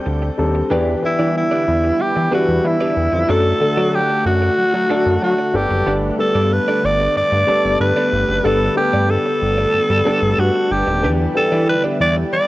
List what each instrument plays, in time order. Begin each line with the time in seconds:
Already playing: grand piano G3 C4 D4 A4
0.06 analog synth bass D2, muted clean electric guitar stroke
0.22 muted clean electric guitar stroke
0.38 analog synth bass D#2, grand piano G3 C4 D4 A4
0.55 muted clean electric guitar stroke
0.70 analog synth bass E2, analog synth pad D3 G3 B3 E4, grand piano E3 B3 D4 G4, clean electric guitar D4 G4 B4 D5
1.02 grand piano E3 B3 D4 G4, alto saxophone E4, muted clean electric guitar stroke
1.19 analog synth bass E3, clean electric guitar D4 G4 B4 D5
1.35 alto saxophone E4, muted clean electric guitar stroke
1.51 clean electric guitar D4 G4 B4 D5
1.67 analog synth bass E2, muted clean electric guitar stroke
1.84 muted clean electric guitar stroke
1.99 analog synth bass E3, alto saxophone G4, muted clean electric guitar stroke
2.16 analog synth bass E3, muted clean electric guitar stroke
2.31 grand piano E3 G3 B3 D4, clean electric guitar D4 G4 B4 D5, alto saxophone F#4
2.48 analog synth bass E2
2.64 analog synth bass E3, alto saxophone E4, muted clean electric guitar stroke
2.81 clean electric guitar D4 G4 B4 D5
2.97 analog synth bass E2, muted clean electric guitar stroke
3.12 analog synth bass F2, muted clean electric guitar stroke
3.28 analog synth bass F#2, grand piano F#3 A3 D4 A4, analog synth pad A3 F#5, clean electric guitar D4 F#4 A4 D5, alto saxophone A4
3.60 grand piano D3 A3 D4 A4, muted clean electric guitar stroke
3.77 analog synth bass F#3, clean electric guitar D4 F#4 A4 D5
3.94 alto saxophone G4, muted clean electric guitar stroke
4.10 muted clean electric guitar stroke
4.26 analog synth bass F#2, alto saxophone F#4
4.42 muted clean electric guitar stroke
4.58 analog synth bass F#3
4.74 analog synth bass F#3, muted clean electric guitar stroke
4.90 grand piano F#3 A3 D4 A4, clean electric guitar D4 F#4 A4 D5
5.06 analog synth bass F#2, muted clean electric guitar stroke
5.22 analog synth bass F#3, alto saxophone F#4, muted clean electric guitar stroke
5.39 muted clean electric guitar stroke
5.54 analog synth bass G1, grand piano G3 B3 D4 A4, analog synth pad G3 B3, alto saxophone G4
5.71 analog synth bass F#1, muted clean electric guitar stroke
5.86 analog synth bass G1, clean electric guitar B3 D4 A4 D5
6.18 grand piano G3 B3 D4 A4, alto saxophone A4, muted clean electric guitar stroke
6.35 analog synth bass G2, clean electric guitar B3 D4 A4 D5
6.51 alto saxophone B4, muted clean electric guitar stroke
6.68 clean electric guitar B3 D4 A4 D5
6.84 analog synth bass G1, alto saxophone D5
7.00 muted clean electric guitar stroke
7.16 analog synth bass G2, alto saxophone D5, muted clean electric guitar stroke
7.32 analog synth bass G2, muted clean electric guitar stroke
7.47 grand piano G3 B3 D4 A4, clean electric guitar B3 D4 A4 D5
7.64 analog synth bass G1, muted clean electric guitar stroke
7.80 analog synth bass G2, alto saxophone B4, muted clean electric guitar stroke
7.96 clean electric guitar B3 D4 A4 D5
8.12 analog synth bass G1, muted clean electric guitar stroke
8.29 analog synth bass F#1, muted clean electric guitar stroke
8.43 analog synth bass G1, grand piano G3 B3 D4 A4, clean electric guitar B3 D4 A4 D5, alto saxophone A4
8.76 grand piano G3 B3 D4 A4, alto saxophone G4, muted clean electric guitar stroke
8.93 analog synth bass G2, clean electric guitar B3 D4 A4 D5
9.09 alto saxophone A4, muted clean electric guitar stroke
9.26 muted clean electric guitar stroke
9.42 analog synth bass G1
9.58 muted clean electric guitar stroke
9.74 analog synth bass G2
9.90 analog synth bass G2, muted clean electric guitar stroke
10.05 grand piano G3 B3 D4 A4, clean electric guitar B3 D4 A4 D5
10.22 analog synth bass G1
10.38 analog synth bass G2, alto saxophone F#4, muted clean electric guitar stroke
10.55 muted clean electric guitar stroke
10.71 analog synth bass G1, alto saxophone G4
10.87 analog synth bass D#1, muted clean electric guitar stroke
11.02 analog synth bass E2, grand piano E3 B3 D4 G4, analog synth pad G3 E4, clean electric guitar D4 G4 B4 D5
11.34 grand piano E3 B3 D4 G4, alto saxophone A4, muted clean electric guitar stroke
11.52 analog synth bass E3, clean electric guitar D4 G4 B4 D5
11.68 alto saxophone B4, muted clean electric guitar stroke
11.84 clean electric guitar D4 G4 B4 D5
12.00 analog synth bass E2, alto saxophone D5, muted clean electric guitar stroke
12.17 muted clean electric guitar stroke
12.33 analog synth bass E3, alto saxophone D5, muted clean electric guitar stroke